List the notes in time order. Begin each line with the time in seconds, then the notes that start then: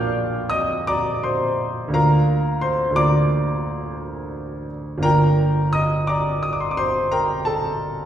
Already playing: A#1 A#3 D4 F4 D5 F5 G5 A#5 D6 F6 G6
0.50 D#5 D#6
0.87 D5 A#5 D6
1.23 C5 C6
1.88 D2 A#3 D4
1.94 F4 A#4 F5 A#5
2.61 C5 C6
2.90 D2 A#3
2.95 D4 F4 D5 A#5 D6
4.98 G1 A#3 D4
5.03 F4 A#4 G5 A#5
5.73 D#5 D#6
6.07 D5 A#5 D6
6.43 D#6
6.53 D6
6.60 C6
6.71 D6
6.77 C5 C6
7.12 A#4 G5 A#5
7.45 A4 A5